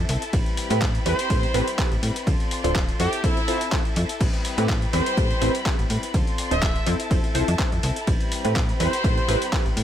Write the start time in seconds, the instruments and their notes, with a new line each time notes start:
Already playing: violin section E5 A5
0.08 fm bass C2, clean electric guitar C4 E4 A4, open hi-hat
0.21 clean electric guitar E4 A4, closed hi-hat
0.33 fm bass A1, clean electric guitar G3 C4 E4 B4, violin section C4 G4 B5, kick, closed hi-hat, ride
0.46 closed hi-hat
0.57 open hi-hat
0.70 fm bass A2, analog polysynth C4 E4 G4 A4 B4, clean electric guitar C4 E4 B4, closed hi-hat
0.82 clean electric guitar C4 E4 B4, kick, clap, closed hi-hat, ride
0.94 clean electric guitar C4 E4 B4, closed hi-hat
1.05 fm bass E2, clean electric guitar G3 C4 E4 B4, analog polysynth C4 E4 G4 A4 B4, trumpet section C5, open hi-hat
1.18 clean electric guitar C4 E4 B4, closed hi-hat
1.29 fm bass A2, clean electric guitar G3 C4 B4, analog polysynth C4 E4 G4 A4 B4, kick, closed hi-hat, ride
1.43 closed hi-hat
1.54 fm bass A1, clean electric guitar G3 C4 E4 B4, analog polysynth C4 E4 G4 A4 B4, open hi-hat
1.68 closed hi-hat
1.78 analog polysynth C4 E4 G4 A4 B4, clean electric guitar E4 B4, kick, clap, closed hi-hat, ride
1.92 fm bass A1, closed hi-hat
2.02 fm bass A2, clean electric guitar G3 C4 E4 B4, open hi-hat
2.15 clean electric guitar C4 E4 B4, closed hi-hat
2.26 fm bass D2, clean electric guitar C4 F4 A4, violin section D5 C6, kick, closed hi-hat, ride
2.40 closed hi-hat
2.51 open hi-hat
2.63 fm bass D1, analog polysynth C4 D4 F4 A4 C5, clean electric guitar F4 A4, closed hi-hat
2.75 clean electric guitar C4 F4 A4, kick, clap, closed hi-hat, ride
2.88 clean electric guitar F4 A4, closed hi-hat
2.99 fm bass F2, clean electric guitar C4 E4 A4, analog polysynth C4 E4 F4 A4 C5, trumpet section G4, violin section E5 A5, open hi-hat
3.13 closed hi-hat
3.23 analog polysynth C4 E4 F4 A4 C5, clean electric guitar C4 E4 A4, trumpet section E4, kick, closed hi-hat, ride
3.37 closed hi-hat
3.47 clean electric guitar C4 E4 A4, analog polysynth C4 E4 F4 A4 C5, open hi-hat
3.61 closed hi-hat
3.72 analog polysynth C4 E4 F4 A4 C5, clean electric guitar C4 E4 A4, kick, clap, closed hi-hat, ride
3.85 closed hi-hat
3.96 fm bass F2, clean electric guitar C4 E4 A4, open hi-hat
4.09 clean electric guitar E4 A4, closed hi-hat
4.20 fm bass A1, clean electric guitar G3 C4 E4 B4, violin section C4 G4 B5, kick, closed hi-hat, crash, ride
4.34 closed hi-hat
4.45 open hi-hat
4.57 fm bass A2, analog polysynth C4 E4 G4 A4 B4, clean electric guitar C4 E4 B4, closed hi-hat
4.69 clean electric guitar G3 C4 E4 B4, kick, clap, closed hi-hat, ride
4.82 clean electric guitar C4 E4 B4, closed hi-hat
4.93 fm bass E2, clean electric guitar G3 C4 E4 B4, analog polysynth C4 E4 G4 A4 B4, trumpet section C5, open hi-hat
5.06 closed hi-hat
5.17 fm bass A2, clean electric guitar G3 C4, analog polysynth C4 E4 G4 A4 B4, kick, closed hi-hat, ride
5.31 closed hi-hat
5.41 fm bass A1, clean electric guitar G3 C4 E4 B4, analog polysynth C4 E4 G4 A4 B4, open hi-hat
5.55 closed hi-hat
5.65 analog polysynth C4 E4 G4 A4 B4, kick, clap, closed hi-hat, ride
5.79 fm bass A1, closed hi-hat
5.89 fm bass A2, clean electric guitar G3 C4 E4 B4, open hi-hat
6.03 clean electric guitar C4 E4 B4, closed hi-hat
6.14 fm bass D2, clean electric guitar C4 F4 A4, violin section D5 C6, kick, closed hi-hat, ride
6.27 closed hi-hat
6.38 open hi-hat
6.51 fm bass D1, analog polysynth C4 D4 F4 A4 C5, clean electric guitar F4 A4, trumpet section E5, closed hi-hat
6.62 clean electric guitar F4 A4, kick, clap, closed hi-hat, ride
6.75 clean electric guitar F4 A4, closed hi-hat
6.86 fm bass F2, clean electric guitar C4 E4 A4, analog polysynth C4 E4 F4 A4 C5, violin section E5 A5, open hi-hat
7.00 closed hi-hat
7.10 fm bass F1, clean electric guitar C4 A4, analog polysynth C4 E4 F4 A4 C5, kick, closed hi-hat, ride
7.24 closed hi-hat
7.34 fm bass C2, clean electric guitar C4 E4 A4, analog polysynth C4 E4 F4 A4 C5, open hi-hat
7.48 fm bass F2, closed hi-hat
7.58 clean electric guitar C4 A4, analog polysynth C4 E4 F4 A4 C5, kick, clap, closed hi-hat, ride
7.72 fm bass F2, closed hi-hat
7.83 fm bass C2, clean electric guitar C4 E4 A4, open hi-hat
7.96 clean electric guitar E4 A4, closed hi-hat
8.07 fm bass A1, clean electric guitar G3 C4 E4 B4, violin section C4 G4 B5, kick, closed hi-hat, ride
8.21 closed hi-hat
8.32 open hi-hat
8.44 fm bass A2, analog polysynth C4 E4 G4 A4 B4, clean electric guitar C4 E4 B4, closed hi-hat
8.55 clean electric guitar G3 C4 E4 B4, kick, clap, closed hi-hat, ride
8.68 clean electric guitar C4 E4 B4, closed hi-hat
8.79 fm bass E2, clean electric guitar G3 C4 E4 B4, analog polysynth C4 E4 G4 A4 B4, trumpet section C5, open hi-hat
8.92 clean electric guitar C4 E4 B4, closed hi-hat
9.03 fm bass A2, clean electric guitar G3 C4 E4 B4, analog polysynth C4 E4 G4 A4 B4, kick, closed hi-hat, ride
9.18 closed hi-hat
9.27 fm bass A1, clean electric guitar G3 C4 E4 B4, analog polysynth C4 E4 G4 A4 B4, open hi-hat
9.42 closed hi-hat
9.52 clean electric guitar G3 E4, analog polysynth C4 E4 G4 A4 B4, kick, clap, closed hi-hat, ride
9.66 fm bass A1, closed hi-hat
9.76 fm bass A2, clean electric guitar G3 C4 E4 B4, open hi-hat